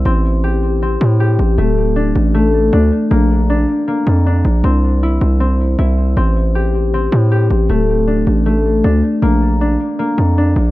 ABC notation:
X:1
M:4/4
L:1/8
Q:1/4=157
K:Aphr
V:1 name="Harp"
C2 G2 C2 G2 | A,2 D2 A,2 D2 | B,2 D2 B,2 D2 | C2 E2 C2 E2 |
C2 G2 C2 G2 | A,2 D2 A,2 D2 | B,2 D2 B,2 D2 |]
V:2 name="808-style bass" clef=bass
A,,,4- A,,, A,,2 A,,, | D,,,3 A,,,3 D,, z | B,,,3 z2 F,,2 B,,, | C,,3 C,,3 C,,2 |
A,,,4- A,,, A,,2 A,,, | D,,,3 A,,,3 D,, z | B,,,3 z2 F,,2 B,,, |]